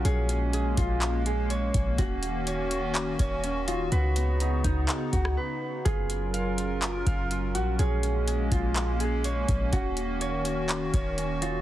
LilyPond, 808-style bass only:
\new Staff \with { instrumentName = "808-style bass" } { \clef bass \time 4/4 \key ais \phrygian \tempo 4 = 124 ais,,4. ais,,2 ais,,8 | dis,,2~ dis,,8 dis,,4. | cis,4. cis,8 r8 cis,8 r4 | fis,,2~ fis,,8 fis,,4 ais,,8 |
ais,,4. ais,,2 ais,,8 | dis,,2~ dis,,8 dis,,4. | }